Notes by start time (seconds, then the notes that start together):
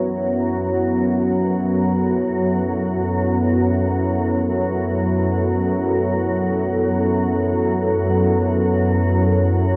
Already playing: F#2 F#3 B3 E4 A4 B4 C#5